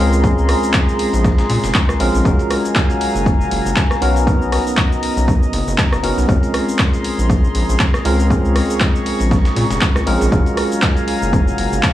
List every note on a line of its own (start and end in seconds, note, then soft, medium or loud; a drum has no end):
0.00 0.54 C#2 loud
0.00 0.21 G#3 medium
0.00 0.21 C4 medium
0.00 0.21 C#4 medium
0.00 0.21 F4 medium
0.00 2.21 G#4 medium
0.00 0.21 A#4 medium
0.00 2.21 A#5 medium
0.00 2.21 C6 medium
0.00 sub drop medium
0.13 closed hi-hat soft
0.13 cabasa medium
0.23 1.97 G#3 medium
0.23 1.97 C4 medium
0.23 1.97 C#4 medium
0.23 1.98 F4 medium
0.23 1.98 A#4 medium
0.23 kick loud
0.23 closed hi-hat medium
0.23 cabasa medium
0.38 cabasa soft
0.49 cross-stick medium
0.49 open hi-hat loud
0.49 open hi-hat medium
0.63 cabasa medium
0.73 kick loud
0.73 snare loud
0.73 clap loud
0.73 closed hi-hat medium
0.73 cabasa medium
0.89 cabasa soft
0.99 closed hi-hat medium
0.99 open hi-hat loud
1.13 1.43 A#1 medium
1.13 closed hi-hat soft
1.13 cabasa medium
1.24 kick loud
1.24 snare loud
1.24 closed hi-hat medium
1.24 cabasa medium
1.38 snare loud
1.38 closed hi-hat medium
1.38 cabasa soft
1.50 1.58 A#2 loud
1.50 snare loud
1.50 closed hi-hat medium
1.50 open hi-hat loud
1.64 1.71 F1 loud
1.64 snare loud
1.64 closed hi-hat medium
1.64 cabasa medium
1.74 kick loud
1.74 snare loud
1.74 clap loud
1.74 closed hi-hat medium
1.74 cabasa medium
1.89 1.96 C#2 loud
1.89 cross-stick medium
1.89 snare soft
1.89 cabasa soft
2.00 2.09 A#1 loud
2.00 2.23 G#3 medium
2.00 2.23 C4 medium
2.00 2.23 C#4 medium
2.00 2.23 F4 medium
2.00 2.23 A#4 loud
2.00 closed hi-hat medium
2.00 open hi-hat loud
2.14 2.21 A#1 loud
2.14 snare soft
2.14 cabasa medium
2.24 2.34 F#1 loud
2.24 6.25 F#3 medium
2.24 3.99 G#3 medium
2.24 3.99 C#4 medium
2.24 3.99 F4 medium
2.24 3.99 F#4 medium
2.24 3.99 A#4 medium
2.24 4.00 F5 medium
2.24 4.00 G#5 medium
2.24 6.25 A#5 medium
2.24 kick loud
2.24 closed hi-hat medium
2.24 cabasa medium
2.39 closed hi-hat soft
2.39 cabasa soft
2.50 cross-stick medium
2.50 closed hi-hat medium
2.50 open hi-hat loud
2.65 cabasa medium
2.75 kick loud
2.75 snare loud
2.75 clap loud
2.75 closed hi-hat medium
2.75 cabasa medium
2.90 closed hi-hat soft
2.90 cabasa soft
3.01 closed hi-hat medium
3.01 open hi-hat loud
3.15 3.44 F#1 medium
3.15 cabasa medium
3.26 kick loud
3.26 closed hi-hat medium
3.26 cabasa medium
3.41 cabasa soft
3.51 3.60 F#1 medium
3.51 closed hi-hat medium
3.51 open hi-hat loud
3.65 3.72 F#1 medium
3.65 cabasa medium
3.76 kick loud
3.76 snare loud
3.76 clap loud
3.76 closed hi-hat medium
3.76 cabasa medium
3.91 cross-stick medium
3.91 snare medium
3.91 cabasa soft
4.01 4.58 B1 loud
4.01 4.24 B3 medium
4.01 4.24 C#4 medium
4.01 4.24 D#4 medium
4.01 4.24 F#4 medium
4.01 4.25 A#4 loud
4.01 6.26 D#5 medium
4.01 closed hi-hat medium
4.01 open hi-hat loud
4.16 closed hi-hat soft
4.16 cabasa medium
4.26 6.00 B3 medium
4.26 6.01 C#4 medium
4.26 6.01 D#4 medium
4.26 6.01 F#4 medium
4.26 6.01 A#4 medium
4.26 kick loud
4.26 closed hi-hat medium
4.26 cabasa soft
4.42 cabasa soft
4.52 cross-stick medium
4.52 open hi-hat loud
4.52 open hi-hat medium
4.67 cabasa medium
4.77 kick loud
4.77 snare loud
4.77 clap loud
4.77 closed hi-hat medium
4.77 cabasa medium
4.92 cabasa soft
5.03 closed hi-hat medium
5.03 open hi-hat loud
5.17 5.46 B1 medium
5.17 closed hi-hat soft
5.17 cabasa medium
5.28 kick loud
5.28 closed hi-hat medium
5.28 cabasa medium
5.43 cabasa soft
5.53 5.62 F#1 loud
5.53 closed hi-hat medium
5.53 open hi-hat loud
5.67 5.74 F#1 loud
5.67 cabasa medium
5.78 kick loud
5.78 snare loud
5.78 clap loud
5.78 closed hi-hat medium
5.78 cabasa medium
5.92 5.99 F#1 loud
5.92 cross-stick medium
5.92 snare soft
5.92 cabasa soft
6.03 6.12 F#1 medium
6.03 6.26 B3 medium
6.03 6.26 C#4 medium
6.03 6.26 D#4 medium
6.03 6.26 F#4 medium
6.03 6.26 A#4 medium
6.03 closed hi-hat medium
6.03 open hi-hat loud
6.18 6.24 B1 medium
6.18 snare soft
6.18 cabasa medium
6.28 6.37 A#1 loud
6.28 8.02 G#3 medium
6.28 8.02 C4 medium
6.28 8.02 C#4 medium
6.28 8.03 F4 medium
6.28 10.28 G#4 medium
6.28 8.03 A#4 medium
6.28 10.28 A#5 medium
6.28 8.29 C6 medium
6.28 kick loud
6.28 closed hi-hat medium
6.28 cabasa medium
6.43 closed hi-hat soft
6.43 cabasa soft
6.54 cross-stick medium
6.54 closed hi-hat medium
6.54 open hi-hat loud
6.69 cabasa medium
6.78 kick loud
6.78 snare loud
6.78 clap loud
6.78 closed hi-hat medium
6.78 cabasa medium
6.93 closed hi-hat soft
6.93 cabasa soft
7.04 closed hi-hat medium
7.04 open hi-hat loud
7.18 7.48 A#1 medium
7.18 cabasa medium
7.30 kick loud
7.30 closed hi-hat medium
7.30 cabasa medium
7.44 cabasa soft
7.55 7.63 A#1 medium
7.55 closed hi-hat medium
7.55 open hi-hat loud
7.69 7.76 A#1 medium
7.69 cabasa medium
7.79 kick loud
7.79 snare loud
7.79 clap loud
7.79 closed hi-hat medium
7.79 cabasa medium
7.94 cross-stick medium
7.94 snare medium
7.94 cabasa soft
8.05 8.61 C#2 loud
8.05 8.27 G#3 medium
8.05 8.28 C4 medium
8.05 8.28 C#4 medium
8.05 8.28 F4 medium
8.05 8.28 A#4 medium
8.05 closed hi-hat medium
8.05 open hi-hat loud
8.19 closed hi-hat soft
8.19 cabasa medium
8.30 10.04 G#3 medium
8.30 10.04 C4 medium
8.30 10.04 C#4 medium
8.30 10.04 F4 medium
8.30 10.05 A#4 medium
8.30 10.30 C#6 medium
8.30 kick loud
8.30 closed hi-hat medium
8.30 cabasa medium
8.45 cabasa soft
8.56 cross-stick medium
8.56 open hi-hat loud
8.56 open hi-hat medium
8.70 cabasa medium
8.80 kick loud
8.80 snare loud
8.80 clap loud
8.80 closed hi-hat medium
8.80 cabasa medium
8.96 cabasa soft
9.06 closed hi-hat medium
9.06 open hi-hat medium
9.20 9.49 A#1 medium
9.20 closed hi-hat soft
9.20 cabasa medium
9.31 kick loud
9.31 snare loud
9.31 closed hi-hat medium
9.31 cabasa medium
9.45 snare loud
9.45 closed hi-hat medium
9.45 cabasa soft
9.56 9.65 A#2 loud
9.56 snare loud
9.56 closed hi-hat medium
9.56 open hi-hat loud
9.70 9.77 F1 loud
9.70 snare loud
9.70 closed hi-hat medium
9.70 cabasa medium
9.81 kick loud
9.81 snare loud
9.81 clap loud
9.81 closed hi-hat medium
9.81 cabasa medium
9.96 10.03 C#2 loud
9.96 cross-stick medium
9.96 snare soft
9.96 cabasa soft
10.06 10.15 A#1 loud
10.06 10.29 G#3 medium
10.06 10.29 C4 medium
10.06 10.29 C#4 medium
10.06 10.30 F4 medium
10.06 10.30 A#4 loud
10.06 closed hi-hat medium
10.06 open hi-hat loud
10.21 10.28 A#1 loud
10.21 snare soft
10.21 cabasa medium
10.31 10.41 F#1 loud
10.31 11.93 F#3 medium
10.31 11.93 G#3 medium
10.31 11.93 C#4 medium
10.31 11.93 F4 medium
10.31 11.93 F#4 medium
10.31 11.93 A#4 medium
10.31 11.93 F5 medium
10.31 11.93 G#5 medium
10.31 11.93 A#5 medium
10.31 kick loud
10.31 closed hi-hat medium
10.31 cabasa medium
10.46 closed hi-hat soft
10.46 cabasa soft
10.57 cross-stick medium
10.57 closed hi-hat medium
10.57 open hi-hat loud
10.72 cabasa medium
10.82 kick loud
10.82 snare loud
10.82 clap loud
10.82 closed hi-hat medium
10.82 cabasa medium
10.97 closed hi-hat soft
10.97 cabasa soft
11.08 open hi-hat loud
11.22 11.51 F#1 medium
11.22 cabasa medium
11.33 kick loud
11.33 closed hi-hat medium
11.33 cabasa medium
11.48 cabasa soft
11.58 11.67 F#1 medium
11.58 closed hi-hat medium
11.58 open hi-hat loud
11.72 11.79 F#1 medium
11.72 cabasa medium
11.83 kick loud
11.83 snare loud
11.83 clap loud
11.83 closed hi-hat medium
11.83 cabasa medium